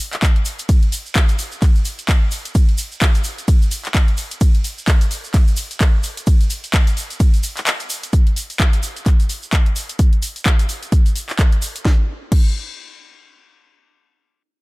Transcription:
0.12 clap, closed hi-hat, shaker
0.22 kick, clap, closed hi-hat, shaker
0.36 closed hi-hat
0.45 open hi-hat, shaker
0.59 closed hi-hat, shaker
0.69 kick, closed hi-hat, ride, shaker
0.83 closed hi-hat
0.92 open hi-hat, shaker
1.06 shaker
1.15 kick, clap, closed hi-hat, ride, shaker
1.29 closed hi-hat, shaker
1.39 open hi-hat, shaker
1.52 shaker
1.62 kick, clap, closed hi-hat, ride, shaker
1.75 shaker
1.85 open hi-hat, shaker
1.99 closed hi-hat, shaker
2.09 kick, clap, closed hi-hat, ride, shaker
2.31 open hi-hat, shaker
2.45 closed hi-hat, shaker
2.55 kick, closed hi-hat, ride, shaker
2.69 closed hi-hat
2.78 open hi-hat, shaker
2.92 shaker
3.02 kick, clap, closed hi-hat, ride, shaker
3.15 closed hi-hat, shaker
3.24 open hi-hat, shaker
3.38 closed hi-hat, shaker
3.48 kick, closed hi-hat, ride, shaker
3.62 shaker
3.71 open hi-hat, shaker
3.85 clap, closed hi-hat, shaker
3.95 kick, clap, closed hi-hat, ride, shaker
4.08 closed hi-hat
4.17 open hi-hat, shaker
4.31 closed hi-hat, shaker
4.41 kick, closed hi-hat, ride, shaker
4.55 closed hi-hat
4.64 open hi-hat, shaker
4.78 shaker
4.88 kick, clap, closed hi-hat, ride, shaker
5.01 closed hi-hat, shaker
5.11 open hi-hat, shaker
5.24 shaker
5.34 kick, clap, closed hi-hat, ride, shaker
5.48 shaker
5.56 open hi-hat, shaker
5.71 closed hi-hat, shaker
5.81 kick, clap, closed hi-hat, ride, shaker
6.03 open hi-hat, shaker
6.17 closed hi-hat, shaker
6.27 kick, closed hi-hat, ride, shaker
6.41 closed hi-hat, shaker
6.50 open hi-hat, shaker
6.64 closed hi-hat, shaker
6.73 kick, clap, closed hi-hat, ride, shaker
6.87 closed hi-hat, shaker
6.97 open hi-hat, shaker
7.10 closed hi-hat, shaker
7.20 kick, closed hi-hat, ride, shaker
7.34 closed hi-hat, shaker
7.43 open hi-hat, shaker
7.57 clap, closed hi-hat, shaker
7.66 clap, closed hi-hat, ride, shaker
7.80 closed hi-hat, shaker
7.90 open hi-hat, shaker
8.03 closed hi-hat, shaker
8.13 kick, closed hi-hat, shaker
8.27 closed hi-hat
8.36 open hi-hat, shaker
8.50 closed hi-hat, shaker
8.60 kick, clap, closed hi-hat, shaker
8.73 closed hi-hat, shaker
8.83 open hi-hat, shaker
8.96 closed hi-hat, shaker
9.06 kick, clap, closed hi-hat, shaker
9.20 closed hi-hat, shaker
9.29 open hi-hat, shaker
9.43 shaker
9.52 kick, clap, closed hi-hat, shaker
9.66 closed hi-hat
9.76 open hi-hat, shaker
9.89 closed hi-hat, shaker
9.99 kick, closed hi-hat, shaker
10.13 closed hi-hat
10.22 open hi-hat, shaker
10.36 closed hi-hat, shaker
10.46 kick, clap, closed hi-hat, shaker
10.59 closed hi-hat, shaker
10.69 open hi-hat, shaker
10.83 closed hi-hat, shaker
10.92 kick, closed hi-hat, shaker
11.06 closed hi-hat, shaker
11.16 open hi-hat, shaker
11.29 clap, shaker
11.39 kick, clap, closed hi-hat, shaker
11.52 closed hi-hat
11.62 open hi-hat, shaker
11.76 closed hi-hat, shaker
11.85 kick, snare
12.32 kick, crash

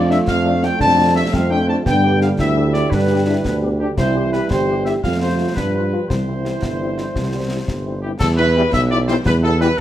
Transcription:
Already playing: F2 F3 A3 F4
0.09 A3 D4 E5, snare
0.27 F2 F5, concert bass drum, snare
0.45 A3 D4
0.63 A3 D4 G5, snare
0.79 F2 D4 A5, concert bass drum, snare
0.98 A3 D4
1.16 A3 D4 E5
1.33 F2 C4 F5, concert bass drum, snare
1.50 A3 D4 G5
1.68 A3 D4 A5
1.85 G2 D3 G3 B3 G5, concert bass drum, snare
2.03 G3 D4 G4
2.21 G3 D4 G4 F5, snare
2.39 D2 E4 E5, concert bass drum, snare
2.56 G3 D4 G4
2.74 G3 D4 G4 D5, snare
2.91 G2 D4 B4, concert bass drum, snare
3.09 G3 D4 G4
3.27 G3 D4 E4 G4
3.44 D2 D4, concert bass drum, snare
3.62 G3 B3 D4 G4
3.79 G3 D4 G4
3.97 C2 E3 G3 E4 C5, concert bass drum, snare, crash
4.16 G3 E4 G4
4.33 G3 E4 G4 B4, snare
4.50 G1 G4 C5, concert bass drum, snare
4.68 G3 E4 G4
4.86 G3 E4 G4 E5, snare
5.03 F2 F3 A3 F4 F5, concert bass drum, snare
5.21 A3 F4 C5
5.39 A3 F4
5.55 G2 G3 D4 B4, concert bass drum, snare
5.74 G3 D4 F4 B4
5.92 G3 D4 F4
6.08 C2 E3 G3 E4 C5, concert bass drum, snare
6.26 G3 C4 E4
6.45 G3 C4 E4, snare
6.62 G1, concert bass drum, snare
6.81 G3 C4 E4
6.98 G3 C4 E4, snare
7.15 C2, concert bass drum, snare
7.34 G3 C4 E4
7.52 G3 C4 E4
7.68 G1, concert bass drum, snare
7.86 G3 C4 E4
8.02 G3 C4 E4 G4
8.20 E2 A4, concert bass drum, snare, crash
8.37 G3 B3 E4 B4
8.55 E3 G3 B3 E4
8.72 B1 E5, concert bass drum, snare
8.90 G3 B3 E4 D5
9.07 E3 G3 B3 E4 C5, snare
9.25 E2 B4, concert bass drum, snare
9.43 G3 B3 E4 A4
9.59 E3 G3 B3 E4 B4, snare

